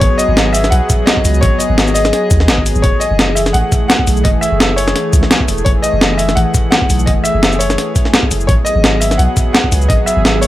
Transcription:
0.00 0.10 G#1 loud
0.00 2.80 F#3 medium
0.00 2.80 B3 medium
0.00 8.45 G#4 loud
0.00 0.19 C#5 loud
0.00 kick loud
0.00 closed hi-hat loud
0.18 0.55 D#5 loud
0.18 closed hi-hat medium
0.18 shaker medium
0.29 0.71 G#1 medium
0.37 snare loud
0.37 closed hi-hat loud
0.53 0.72 E5 loud
0.53 open hi-hat medium
0.53 shaker medium
0.64 snare soft
0.64 shaker soft
0.70 0.81 B1 loud
0.70 1.04 F#5 loud
0.70 closed hi-hat medium
0.90 kick loud
0.90 closed hi-hat medium
0.90 shaker medium
1.06 1.43 D#5 loud
1.06 snare loud
1.06 closed hi-hat loud
1.17 kick medium
1.25 1.41 C#2 medium
1.25 open hi-hat medium
1.25 shaker medium
1.34 shaker soft
1.41 1.51 G#1 loud
1.41 1.60 C#5 loud
1.41 kick loud
1.41 closed hi-hat loud
1.59 1.92 D#5 loud
1.59 closed hi-hat medium
1.59 shaker medium
1.70 2.12 G#1 medium
1.78 snare loud
1.78 closed hi-hat loud
1.87 shaker soft
1.94 2.61 D#5 loud
1.94 open hi-hat medium
1.94 shaker medium
2.05 snare medium
2.05 shaker soft
2.13 snare soft
2.13 closed hi-hat medium
2.31 2.50 D#2 loud
2.31 kick loud
2.31 closed hi-hat medium
2.31 shaker medium
2.40 snare soft
2.48 2.74 G#1 medium
2.48 snare loud
2.48 closed hi-hat loud
2.58 kick medium
2.66 open hi-hat medium
2.66 shaker medium
2.76 2.83 G#1 loud
2.76 shaker soft
2.82 2.92 F#1 loud
2.82 8.45 E3 medium
2.82 8.44 A3 medium
2.82 3.01 C#5 loud
2.82 kick loud
2.82 closed hi-hat loud
3.00 3.37 D#5 loud
3.00 closed hi-hat medium
3.00 shaker medium
3.11 3.53 F#1 medium
3.19 snare loud
3.19 closed hi-hat medium
3.35 3.40 E5 medium
3.35 open hi-hat medium
3.35 shaker medium
3.46 snare medium
3.46 shaker soft
3.53 3.63 A1 loud
3.53 3.87 F#5 loud
3.53 closed hi-hat medium
3.72 kick loud
3.72 closed hi-hat medium
3.72 shaker medium
3.88 4.25 F#5 loud
3.88 snare loud
3.88 closed hi-hat loud
3.99 kick medium
4.07 4.23 B1 medium
4.07 open hi-hat medium
4.07 shaker medium
4.17 shaker soft
4.24 4.34 F#1 loud
4.24 4.29 D#5 loud
4.24 kick loud
4.24 closed hi-hat loud
4.41 4.78 E5 loud
4.41 closed hi-hat medium
4.41 shaker medium
4.52 4.94 F#1 medium
4.60 snare loud
4.60 closed hi-hat loud
4.76 5.44 C#5 loud
4.76 open hi-hat medium
4.76 shaker medium
4.88 snare medium
4.88 shaker soft
4.96 snare soft
4.96 closed hi-hat medium
5.13 5.22 C#2 loud
5.13 kick loud
5.13 closed hi-hat medium
5.13 shaker medium
5.23 snare soft
5.31 snare loud
5.31 closed hi-hat loud
5.40 kick medium
5.48 5.65 E1 medium
5.48 open hi-hat medium
5.48 shaker medium
5.58 shaker soft
5.65 5.75 F#1 loud
5.65 5.70 C#5 loud
5.65 kick loud
5.65 closed hi-hat medium
5.82 6.19 D#5 loud
5.82 closed hi-hat medium
5.82 shaker medium
5.93 6.35 F#1 medium
6.01 snare loud
6.01 closed hi-hat medium
6.18 6.37 E5 loud
6.18 open hi-hat medium
6.18 shaker medium
6.29 snare soft
6.29 shaker soft
6.35 6.45 A1 loud
6.35 6.69 F#5 loud
6.35 closed hi-hat medium
6.54 kick loud
6.54 closed hi-hat medium
6.54 shaker medium
6.71 7.08 F#5 loud
6.71 snare loud
6.71 closed hi-hat medium
6.82 kick medium
6.90 7.06 B1 medium
6.90 open hi-hat medium
6.90 shaker medium
6.99 shaker soft
7.06 7.16 F#1 loud
7.06 7.11 D#5 loud
7.06 kick loud
7.06 closed hi-hat medium
7.24 7.61 E5 loud
7.24 closed hi-hat medium
7.24 shaker medium
7.35 7.77 F#1 medium
7.43 snare loud
7.43 closed hi-hat medium
7.52 shaker soft
7.59 8.26 C#5 loud
7.59 open hi-hat medium
7.59 shaker medium
7.70 snare soft
7.70 shaker soft
7.78 snare soft
7.78 closed hi-hat medium
7.96 kick loud
7.96 closed hi-hat medium
7.96 shaker medium
8.05 snare soft
8.14 snare loud
8.14 closed hi-hat medium
8.23 kick medium
8.31 8.47 F#1 loud
8.31 open hi-hat medium
8.31 shaker medium
8.41 shaker soft
8.47 8.57 G#1 loud
8.47 10.47 F#3 medium
8.47 10.47 B3 medium
8.47 10.47 G#4 medium
8.47 8.52 C#5 loud
8.47 kick loud
8.47 closed hi-hat medium
8.65 9.02 D#5 loud
8.65 closed hi-hat medium
8.65 shaker medium
8.76 9.18 G#1 medium
8.84 snare loud
8.84 closed hi-hat medium
9.00 9.19 E5 medium
9.00 open hi-hat medium
9.00 shaker medium
9.11 snare soft
9.11 shaker soft
9.18 9.28 B1 loud
9.18 9.51 F#5 loud
9.18 closed hi-hat medium
9.37 kick loud
9.37 closed hi-hat medium
9.37 shaker medium
9.53 9.90 F#5 loud
9.53 snare loud
9.53 closed hi-hat loud
9.64 kick medium
9.72 9.88 C#2 medium
9.72 open hi-hat medium
9.72 shaker medium
9.82 shaker soft
9.88 9.98 G#1 loud
9.88 9.93 D#5 loud
9.88 kick loud
9.88 closed hi-hat loud
10.06 10.43 E5 loud
10.06 closed hi-hat medium
10.06 shaker medium
10.17 10.47 G#1 medium
10.25 snare loud
10.25 closed hi-hat medium
10.41 10.47 C#5 loud
10.41 open hi-hat medium
10.41 shaker medium

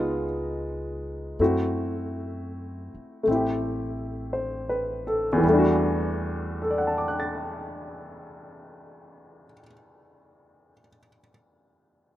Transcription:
0.00 1.36 C#2 medium
0.00 1.40 G#3 soft
0.00 1.41 B3 soft
0.00 1.41 D#4 soft
0.00 1.41 F4 soft
0.00 0.23 C#5 medium
1.39 2.91 F#2 medium
1.39 3.22 A3 soft
1.39 3.26 C4 soft
1.39 3.29 E4 soft
1.39 3.29 F#4 soft
2.94 muted upright bass stroke soft
3.23 5.40 A1 medium
3.23 5.42 A3 soft
3.27 5.44 C4 soft
3.27 5.45 E4 soft
3.35 5.47 G4 soft
4.33 5.02 C5 soft
4.69 5.28 B4 soft
5.07 5.67 A4 soft
5.33 9.46 E2 soft
5.38 9.51 E3 soft
5.43 9.53 E2 medium
5.43 9.58 G3 soft
5.48 9.62 A3 soft
5.53 9.67 D4 soft
5.59 9.72 F#4 soft
6.62 10.72 A4 soft
6.70 10.80 D5 soft
6.78 10.88 F#5 soft
6.87 10.97 A5 soft
6.98 11.08 D6 soft
7.08 11.18 F#6 soft
7.20 11.29 A6 soft

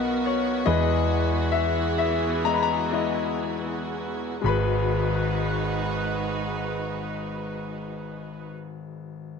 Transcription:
0.00 0.63 B1 medium
0.00 0.63 B2 medium
0.00 0.69 B3 medium
0.00 4.40 B3 medium
0.00 4.40 F#4 medium
0.00 0.63 A#4 medium
0.00 0.68 A#4 medium
0.00 0.29 D#5 medium
0.00 0.69 F#5 loud
0.26 0.68 C#5 medium
0.66 4.40 E2 medium
0.66 4.40 E3 medium
0.66 4.41 E3 medium
0.66 1.88 G#3 medium
0.66 1.88 E4 medium
0.66 4.41 G#4 medium
0.66 2.41 G#4 medium
0.66 1.89 B4 medium
0.66 1.55 D#5 medium
1.52 1.97 E5 medium
1.98 2.46 E5 medium
2.45 2.77 G#3 medium
2.45 2.77 E4 soft
2.45 2.78 D#5 medium
2.45 2.52 A#5 medium
2.54 2.62 B5 medium
2.63 3.37 A#5 medium
2.91 3.96 G#3 medium
2.91 3.97 E4 soft
2.91 3.97 D#5 medium
4.42 8.49 G#1 medium
4.42 8.46 G#3 medium
4.42 8.49 G#3 medium
4.42 8.49 D#4 medium
4.42 8.49 F#4 medium
4.42 8.49 B4 medium
4.46 8.53 B4 medium
4.46 8.51 B5 medium

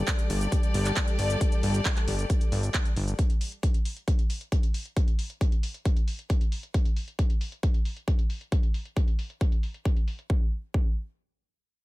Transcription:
0.00 3.15 G3 medium
0.00 3.15 G4 medium
0.00 3.15 A4 medium
0.00 3.15 D5 medium
0.08 kick loud
0.08 clap loud
0.08 closed hi-hat medium
0.08 shaker soft
0.19 closed hi-hat soft
0.19 shaker soft
0.30 0.47 G1 medium
0.30 open hi-hat loud
0.41 closed hi-hat soft
0.41 shaker medium
0.52 kick loud
0.52 closed hi-hat medium
0.52 shaker soft
0.63 closed hi-hat soft
0.63 shaker soft
0.74 0.92 G1 medium
0.74 open hi-hat loud
0.85 clap soft
0.85 closed hi-hat soft
0.85 shaker medium
0.97 kick loud
0.97 clap loud
0.97 closed hi-hat medium
0.97 shaker soft
1.08 closed hi-hat soft
1.08 shaker soft
1.19 1.36 G1 medium
1.19 open hi-hat loud
1.30 closed hi-hat soft
1.30 shaker medium
1.41 kick loud
1.41 closed hi-hat medium
1.41 shaker soft
1.52 closed hi-hat soft
1.52 shaker soft
1.63 1.81 G1 loud
1.63 open hi-hat loud
1.74 closed hi-hat soft
1.74 shaker medium
1.85 kick loud
1.85 clap loud
1.85 closed hi-hat medium
1.85 shaker medium
1.96 clap soft
1.96 closed hi-hat soft
1.96 shaker soft
2.08 2.25 G1 medium
2.08 open hi-hat loud
2.19 closed hi-hat soft
2.19 shaker medium
2.30 kick loud
2.30 closed hi-hat medium
2.30 shaker medium
2.41 closed hi-hat soft
2.41 shaker soft
2.52 2.69 G1 medium
2.52 open hi-hat loud
2.63 closed hi-hat soft
2.63 shaker medium
2.74 kick loud
2.74 clap loud
2.74 closed hi-hat medium
2.74 shaker soft
2.85 closed hi-hat soft
2.85 shaker soft
2.96 3.14 G1 medium
2.96 open hi-hat loud
3.08 closed hi-hat soft
3.08 shaker medium
3.19 kick loud
3.19 closed hi-hat medium
3.30 closed hi-hat soft
3.41 open hi-hat loud
3.52 closed hi-hat soft
3.63 kick loud
3.63 closed hi-hat medium
3.74 closed hi-hat soft
3.85 open hi-hat loud
3.97 closed hi-hat soft
4.08 kick loud
4.08 closed hi-hat medium
4.19 closed hi-hat soft
4.30 open hi-hat loud
4.41 closed hi-hat soft
4.52 kick loud
4.52 closed hi-hat medium
4.63 closed hi-hat soft
4.74 open hi-hat loud
4.85 closed hi-hat soft
4.97 kick loud
4.97 closed hi-hat medium
5.08 closed hi-hat soft
5.19 open hi-hat loud
5.30 closed hi-hat soft
5.41 kick loud
5.41 closed hi-hat medium
5.52 closed hi-hat soft
5.63 open hi-hat loud
5.74 closed hi-hat soft
5.85 kick loud
5.85 closed hi-hat medium
5.97 closed hi-hat soft
6.08 open hi-hat loud
6.19 closed hi-hat soft
6.30 kick loud
6.30 closed hi-hat medium
6.41 closed hi-hat soft
6.52 open hi-hat loud
6.63 closed hi-hat soft
6.74 kick loud
6.74 closed hi-hat medium
6.85 closed hi-hat soft
6.96 open hi-hat medium
7.08 closed hi-hat soft
7.19 kick loud
7.19 closed hi-hat medium
7.30 closed hi-hat soft
7.41 open hi-hat loud
7.52 closed hi-hat soft
7.63 kick loud
7.63 closed hi-hat medium
7.74 closed hi-hat soft
7.85 open hi-hat medium
7.96 closed hi-hat soft
8.08 kick loud
8.08 closed hi-hat medium
8.19 closed hi-hat soft
8.30 open hi-hat medium
8.41 closed hi-hat soft
8.52 kick loud
8.52 closed hi-hat medium
8.63 closed hi-hat soft
8.74 open hi-hat loud
8.85 closed hi-hat soft
8.97 kick loud
8.97 closed hi-hat medium
9.08 closed hi-hat soft
9.19 open hi-hat loud
9.30 closed hi-hat soft
9.41 kick loud
9.41 closed hi-hat medium
9.52 closed hi-hat soft
9.63 open hi-hat medium
9.74 closed hi-hat soft
9.85 kick loud
9.85 closed hi-hat medium
9.97 closed hi-hat soft
10.08 open hi-hat medium
10.19 closed hi-hat soft
10.30 kick loud
10.74 kick loud

